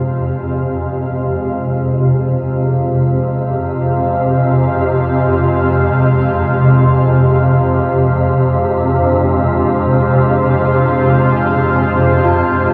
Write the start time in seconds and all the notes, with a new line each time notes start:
Already playing: F2 C3 G#3 F4 G4 C5 F5
8.96 A#2
12.25 F4